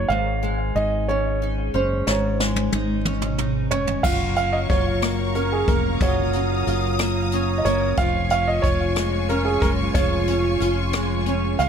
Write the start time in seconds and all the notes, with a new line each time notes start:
Already playing: D#3 F#3 A#3 D#4 C#5
0.09 G#1 G#2 F5
0.43 G#3
0.75 G#1 D#4 D#5
1.08 C#4 C#5
1.42 D#4
1.74 F#1 C#4 C5
2.07 G#1 G#2 C#5, snare
2.40 G#3, snare
2.56 high tom
2.72 G#1 D#4, high tom
3.05 C#4, mid tom
3.22 mid tom
3.38 D#4, mid tom
3.71 F1 C#4 C#5, floor tom
3.87 floor tom
4.03 F#1 F#3 F4 F5 A#5 C#6, kick, crash
4.36 C#4 F5, closed hi-hat
4.53 D#5
4.70 F#1 F4 C#5, kick, closed hi-hat
5.02 A#3, cross-stick, closed hi-hat
5.35 C#4 A#4, closed hi-hat
5.53 G#4
5.68 F1 A#3 A#4, kick, closed hi-hat
6.01 F#1 F#3 F4 C#5 D#6, kick, closed hi-hat
6.33 C#4, closed hi-hat
6.67 F#1 F4, closed hi-hat
6.99 A#3, cross-stick, closed hi-hat
7.32 C#4, closed hi-hat
7.58 D#5
7.65 F#1 A#3 C#5, closed hi-hat
7.97 F1 F3 F4 C#5 F5 G#5 C#6, kick, closed hi-hat
8.30 C#4 F5, closed hi-hat
8.48 D#5
8.62 F1 F4 C#5, kick, closed hi-hat
8.96 G#3, cross-stick, closed hi-hat
9.29 C#4 A#4, closed hi-hat
9.45 G#4
9.61 F#1 G#3 A#4, kick, closed hi-hat
9.94 F1 F3 F4 C#5, kick, closed hi-hat
10.27 C#4, closed hi-hat
10.60 F1 F4, closed hi-hat
10.93 G#3, cross-stick, closed hi-hat
11.26 C#4, closed hi-hat
11.59 C#2 G#3 F5, closed hi-hat